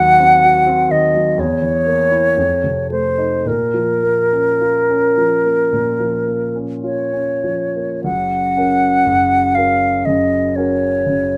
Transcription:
Already playing: D#2 D#3 F#3 F#5
0.20 C4
0.44 F#4
0.66 C4
0.89 D#3 D#5
1.14 F#3
1.38 E2 C#5
1.62 E3
1.86 A#3
2.11 E4
2.37 F2
2.64 C3
2.90 A3 C5
3.18 D#4
3.46 A#2 A#4
3.74 F3
4.03 A#3
4.32 C#4
4.61 F4
4.90 C#4
5.17 F3
5.45 A#3
5.72 A#2
6.00 F3
6.27 A#3
6.56 C#4
6.84 F4 C#5
7.13 C#4
7.44 F3
7.76 A#3
8.04 F#1 F#2 F#5
8.57 C#4 F#4 A#4
9.06 F#1 F#2
9.55 C#4 F#4 A#4 F5
10.05 F#1 F#2 D#5
10.56 C#4 F#4 A#4 C#5
11.06 F#1 F#2

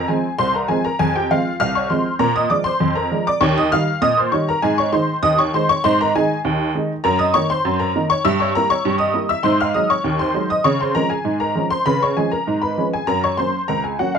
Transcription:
0.08 F3 G#3 C4 G#4 G#5
0.39 C2 C5 C6
0.54 A#4 A#5
0.68 F3 G#3 C4 G#4 G#5
0.84 A#4 A#5
0.99 F2 G#4 G#5
1.16 G4 G5
1.31 F3 G#3 C4 F4 F5
1.60 C2 F5 F6
1.75 C#5 C#6
1.90 F3 G#3 C4 C5 C6
2.19 A#2 A#4 A#5
2.36 D#5 D#6
2.50 F3 G#3 D4 D5 D6
2.64 C5 C6
2.80 F2
2.95 A#4 A#5
3.11 F3 G#3 D4
3.27 D5 D6
3.41 D#2 C#5 C#6
3.58 D#5 D#6
3.72 D#3 G3 D#4 F5 F6
4.02 A#2 D#5 D#6
4.17 C5 C6
4.32 D#3 G3 D#4 C#5 C#6
4.49 A#4 A#5
4.62 G#2 G#4 G#5
4.78 C#5 C#6
4.92 D#3 G#3 D#4 C5 C6
5.23 D#2 D#5 D#6
5.39 C#5 C#6
5.54 D#3 G#3 D#4 C5 C6
5.69 C#5 C#6
5.84 G#2 C5 C6
6.01 A#4 A#5
6.15 D#3 G#3 D#4 G#4 G#5
6.45 D#2
6.75 D#3 G#3 D#4
7.04 F#2 A#4 A#5
7.19 D#5 D#6
7.34 D#3 A#3 D#4 C#5 C#6
7.50 C5 C6
7.65 F#2
7.80 A#4 A#5
7.95 D#3 A#3 D#4
8.10 C#5 C#6
8.25 G2 E5 E6
8.40 C#5 C#6
8.55 G3 A#3 E4 A#4 A#5
8.70 C#5 C#6
8.85 G2
8.98 D#5 D#6
9.14 G3 A#3 E4
9.29 E5 E6
9.43 G#2 C5 C6
9.61 F5 F6
9.74 F#3 G#3 D#4 D#5 D#6
9.90 C#5 C#6
10.04 D#2
10.19 C5 C6
10.34 F#3 G#3 D#4
10.50 D#5 D#6
10.64 C#3 C#5 C#6
10.81 C5 C6
10.95 F3 G#3 C#4 A#4 A#5
11.10 G#4 G#5
11.25 G#2
11.40 A#4 A#5
11.55 F3 G#3 C#4
11.70 C5 C6
11.86 C#3 B4 B5
12.03 C#5 C#6
12.17 F3 G#3 C#4 G#4 G#5
12.31 A#4 A#5
12.47 G#2
12.62 B4 B5
12.77 F3 G#3 C#4
12.93 G#4 G#5
13.07 F#2 A#4 A#5
13.24 C#5 C#6
13.37 F#3 A#3 C#4 C5 C6
13.68 C#2 A#4 A#5
13.84 G#4 G#5
13.99 F#3 A#3 C#4 F#4 F#5
14.15 F4 F5

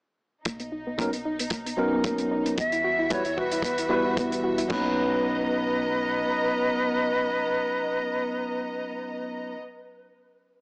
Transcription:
0.45 B1 A#3 D#4, kick, closed hi-hat
0.60 B3, closed hi-hat
0.72 D#4
0.87 B3
0.98 F#3 A#3 B3 C#4 D#4 A#4, kick, closed hi-hat
1.13 B3, closed hi-hat
1.25 D#4
1.39 B3, closed hi-hat
1.50 A#3, kick, closed hi-hat
1.66 B3, closed hi-hat
1.77 F#3 B3 C#4 D#4 A#4
1.93 B3
2.04 A#3, kick, closed hi-hat
2.18 B3, closed hi-hat
2.31 D#4
2.46 B3, closed hi-hat
2.57 E2 G3 B3 F#4 E5, kick, closed hi-hat
2.72 E4, closed hi-hat
2.84 F#4
2.99 E4
3.10 G3 B3 E4 F#4 B4 C#5, kick, closed hi-hat
3.25 E4, closed hi-hat
3.37 F#4 B4, kick
3.51 E4, closed hi-hat
3.62 B3, kick, closed hi-hat
3.78 E4, closed hi-hat
3.89 G3 B3 E4 F#4 B4
4.05 E4
4.17 B3, kick, closed hi-hat
4.32 E4, closed hi-hat
4.44 F#4
4.58 E4, closed hi-hat
4.68 B1 F#3 A#3 B3 C#4 D#4 B4 D#5 A#5, kick, crash

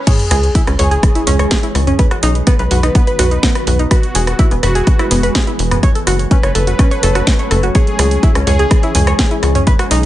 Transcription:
0.07 E3 G#3 C#4 G#4 C#5, kick, closed hi-hat, crash, sub drop
0.19 closed hi-hat
0.31 C#2 G#4, cross-stick, open hi-hat
0.43 closed hi-hat
0.55 E4, kick, closed hi-hat
0.67 C#2 C#4, cross-stick, closed hi-hat
0.79 C#2 G#4 C#5, mid tom, open hi-hat
0.91 G#4, closed hi-hat
1.03 kick, cross-stick, closed hi-hat
1.15 E4, closed hi-hat
1.27 C#2 C#4, mid tom, open hi-hat
1.39 C#5, cross-stick, closed hi-hat
1.51 G#4, kick, snare, closed hi-hat
1.63 E4, closed hi-hat
1.75 C#2, cross-stick, open hi-hat
1.87 C#4, closed hi-hat, mid tom
1.99 D#3 F#3 B3 F#4 B4, kick, closed hi-hat
2.11 F#4, cross-stick, closed hi-hat
2.23 B1 D#4, open hi-hat
2.35 closed hi-hat
2.47 B3 B4, kick, cross-stick, closed hi-hat
2.59 B1 B4, closed hi-hat
2.71 B1 F#4, mid tom, open hi-hat
2.83 D#4, cross-stick, closed hi-hat
2.95 B3, kick, closed hi-hat
3.07 B4, closed hi-hat
3.19 B1 F#4, cross-stick, mid tom, open hi-hat
3.31 D#4, closed hi-hat
3.43 B3, kick, snare, closed hi-hat
3.55 B4, cross-stick, closed hi-hat
3.67 B1 F#4, mid tom, open hi-hat
3.79 D#4, closed hi-hat
3.91 E3 G#3 F#4 G#4 B4, kick, cross-stick, closed hi-hat
4.03 closed hi-hat
4.15 E1 G#4, open hi-hat
4.27 cross-stick, closed hi-hat
4.39 E4, kick, closed hi-hat
4.51 E1 B3, closed hi-hat
4.63 E1 F#4 B4, cross-stick, mid tom, open hi-hat
4.75 G#4, closed hi-hat
4.87 kick, closed hi-hat
4.99 E4, cross-stick, closed hi-hat
5.11 E1 B3, mid tom, open hi-hat
5.23 B4, closed hi-hat
5.35 G#4, kick, cross-stick, snare, closed hi-hat
5.47 E4, closed hi-hat
5.59 E1, open hi-hat
5.71 B3, cross-stick, closed hi-hat, mid tom
5.83 F#3 A3 C#4 A4 C#5, kick, closed hi-hat
5.95 A4, closed hi-hat
6.07 F#1 F#4, cross-stick, open hi-hat
6.19 closed hi-hat
6.31 C#4 B4, kick, closed hi-hat
6.43 F#1 C#5, cross-stick, closed hi-hat
6.55 F#1 A4, mid tom, open hi-hat
6.67 F#4, closed hi-hat
6.79 C#4, kick, cross-stick, closed hi-hat
6.91 C#5, closed hi-hat
7.03 F#1 A4, mid tom, open hi-hat
7.15 F#4, cross-stick, closed hi-hat
7.27 C#4, kick, snare, closed hi-hat
7.39 C#5, closed hi-hat
7.51 F#1 A4, cross-stick, mid tom, open hi-hat
7.63 F#4, closed hi-hat
7.75 E3 G#3 G#4 C#5, kick, closed hi-hat
7.87 closed hi-hat
7.99 C#2 G#4, cross-stick, open hi-hat
8.11 closed hi-hat
8.23 E4, kick, closed hi-hat
8.35 C#2 C#4, cross-stick, closed hi-hat
8.47 C#2 G#4 C#5, mid tom, open hi-hat
8.59 G#4, closed hi-hat
8.71 kick, cross-stick, closed hi-hat
8.83 E4, closed hi-hat
8.95 C#2 G#5, mid tom, open hi-hat
9.07 C#5, cross-stick, closed hi-hat
9.19 G#4, kick, snare, closed hi-hat
9.31 E4, closed hi-hat
9.43 C#2, cross-stick, open hi-hat
9.55 C#4, closed hi-hat, mid tom
9.67 D#3 F#3 B3 F#4 B4, kick, closed hi-hat
9.79 F#4, cross-stick, closed hi-hat
9.91 B1 D#4, open hi-hat

